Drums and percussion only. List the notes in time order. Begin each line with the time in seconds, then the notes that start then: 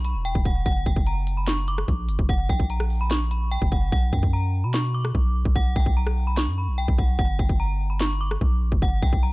0.05 closed hi-hat
0.25 closed hi-hat
0.35 kick
0.45 kick, closed hi-hat
0.66 kick, closed hi-hat
0.86 kick, closed hi-hat
0.96 kick
1.07 closed hi-hat
1.27 closed hi-hat
1.47 snare, clap, closed hi-hat
1.68 closed hi-hat
1.78 cross-stick
1.88 kick, closed hi-hat
2.09 closed hi-hat
2.19 kick
2.29 kick, closed hi-hat
2.49 kick, closed hi-hat
2.60 kick
2.70 closed hi-hat
2.80 cross-stick
2.90 open hi-hat
3.11 snare, clap, closed hi-hat
3.31 closed hi-hat
3.52 closed hi-hat
3.62 kick
3.72 kick, closed hi-hat
3.92 kick
4.13 kick
4.23 kick
4.74 snare, clap
5.05 cross-stick
5.15 kick
5.45 kick
5.56 kick
5.76 kick
5.86 kick
6.07 cross-stick
6.37 snare, clap
6.88 kick
6.98 kick
7.19 kick
7.39 kick
7.49 kick
8.00 snare, clap
8.31 cross-stick
8.41 kick
8.72 kick
8.82 kick
9.02 kick
9.13 kick